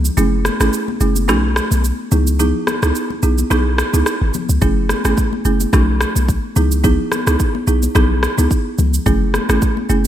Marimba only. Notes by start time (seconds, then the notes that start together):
0.17 A3 C#4 E4 G#4
0.60 A3 C#4 E4 G#4
1.01 A3 C#4 E4 G#4
1.28 A3 C#4 D#4 F#4
2.12 B3 D#4 E4 G#4
2.39 B3 D#4 E4 G#4
2.82 B3 D#4 E4 G#4
3.23 B3 D#4 E4 G#4
3.50 B3 D#4 E4 G#4
3.94 B3 D#4 E4 G#4
4.62 A3 C#4 E4 G#4
5.05 A3 C#4 E4 G#4
5.45 A3 C#4 E4 G#4
5.73 A3 C#4 D#4 F#4
6.56 B3 D#4 E4 G#4
6.84 B3 D#4 E4 G#4
7.27 B3 D#4 E4 G#4
7.67 B3 D#4 E4 G#4
7.95 B3 D#4 E4 G#4
8.38 B3 D#4 E4 G#4
9.06 A3 C#4 E4 G#4
9.49 A3 C#4 E4 G#4
9.89 A3 C#4 E4 G#4